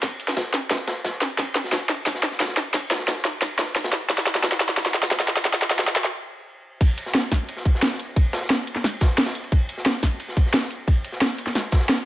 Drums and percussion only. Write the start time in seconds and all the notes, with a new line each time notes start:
0.03 kick, snare, closed hi-hat, ride
0.20 closed hi-hat, ride
0.28 snare
0.37 kick, snare, closed hi-hat, ride
0.54 snare, closed hi-hat, ride
0.70 kick, snare, closed hi-hat, ride
0.87 snare, closed hi-hat, ride
1.04 kick, snare, closed hi-hat, ride
1.21 snare, closed hi-hat, ride
1.38 kick, snare, closed hi-hat, ride
1.55 snare, closed hi-hat, ride
1.64 snare
1.71 kick, snare, closed hi-hat, ride
1.89 snare, closed hi-hat, ride
1.99 ride
2.06 kick, snare, closed hi-hat, ride
2.15 snare
2.23 snare, closed hi-hat, ride
2.31 snare
2.40 kick, snare, closed hi-hat, ride
2.48 snare
2.57 snare, closed hi-hat, ride
2.74 kick, snare, closed hi-hat, ride
2.90 snare, closed hi-hat, ride
2.99 snare
3.07 kick, snare, closed hi-hat, ride
3.25 snare, closed hi-hat, ride
3.41 kick, snare, closed hi-hat, ride
3.58 snare, closed hi-hat, ride
3.76 kick, snare, closed hi-hat, ride
3.84 snare, ride
3.93 snare, closed hi-hat
4.01 ride
4.10 kick, snare, closed hi-hat, ride
4.18 snare
4.26 snare, closed hi-hat, ride
4.35 snare
4.43 kick, snare, closed hi-hat, ride
4.52 snare
4.60 snare, closed hi-hat, ride
4.69 snare, ride
4.77 kick, snare, closed hi-hat, ride
4.86 snare
4.94 snare, closed hi-hat, ride
5.03 snare
5.11 kick, snare, closed hi-hat, ride
5.20 snare
5.28 snare, closed hi-hat, ride
5.37 snare
5.45 kick, snare, closed hi-hat, ride
5.54 snare
5.62 snare, closed hi-hat, ride
5.71 snare
5.79 kick, snare, closed hi-hat, ride
5.88 snare
5.96 snare, closed hi-hat, ride
6.04 snare
6.81 kick, closed hi-hat, ride, crash
6.98 closed hi-hat, ride
7.06 snare
7.14 snare, closed hi-hat, ride
7.32 kick, snare, closed hi-hat, ride
7.40 ride
7.49 closed hi-hat, ride
7.57 snare
7.65 kick, closed hi-hat, ride
7.75 snare
7.82 snare, closed hi-hat, ride
7.92 snare
7.99 closed hi-hat, ride
8.16 kick, closed hi-hat, ride
8.33 snare, closed hi-hat, ride
8.41 snare
8.50 snare, closed hi-hat, ride
8.67 closed hi-hat, ride
8.76 snare
8.84 snare, closed hi-hat, ride
9.01 kick, snare, closed hi-hat, ride
9.18 snare, closed hi-hat, ride
9.26 snare, ride
9.35 closed hi-hat
9.44 ride
9.52 kick, closed hi-hat, ride
9.69 closed hi-hat, ride
9.78 snare
9.86 snare, closed hi-hat, ride
10.02 kick, snare, closed hi-hat, ride
10.11 ride
10.20 closed hi-hat, ride
10.28 snare
10.37 kick, closed hi-hat, ride
10.46 snare
10.54 snare, closed hi-hat, ride
10.61 snare
10.70 closed hi-hat, ride
10.88 kick, closed hi-hat, ride
11.04 closed hi-hat, ride
11.12 snare
11.21 snare, closed hi-hat, ride
11.38 closed hi-hat, ride
11.47 snare
11.55 snare, closed hi-hat, ride
11.72 kick, snare, closed hi-hat, ride
11.81 snare
11.88 snare, closed hi-hat, ride